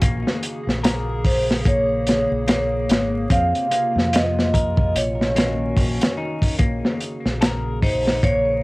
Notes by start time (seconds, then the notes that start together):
0.02 A#1 C#3 A#3 G#4, kick, closed hi-hat
0.27 snare
0.43 closed hi-hat
0.67 A#1, snare
0.83 A#4, snare, closed hi-hat
1.25 C5, kick, open hi-hat
1.51 snare
1.65 A#3 C#5, kick, closed hi-hat
2.07 snare, closed hi-hat
2.31 A#1
2.47 A#3, snare, closed hi-hat
2.89 G#1, snare, closed hi-hat
3.30 F2 C3 C4 F4 F5, kick, closed hi-hat
3.55 closed hi-hat
3.71 A#3, closed hi-hat
3.96 F2, snare
4.13 D#5, snare, closed hi-hat
4.39 snare
4.54 A#4, kick, closed hi-hat
4.77 kick
4.94 A#1 D#2 D#3 C#4 F#4 C#5, closed hi-hat
5.21 snare
5.36 A#3, snare, closed hi-hat
5.76 A#1, kick, open hi-hat
6.01 snare, closed hi-hat
6.17 D#4
6.42 kick, open hi-hat
6.59 A#1 C#3 A#3 G#4, kick, closed hi-hat
6.85 snare
7.00 closed hi-hat
7.25 A#1, snare
7.41 A#4, snare, closed hi-hat
7.82 D#4 C5, kick, open hi-hat
8.07 snare
8.23 A#3 C#5, kick, closed hi-hat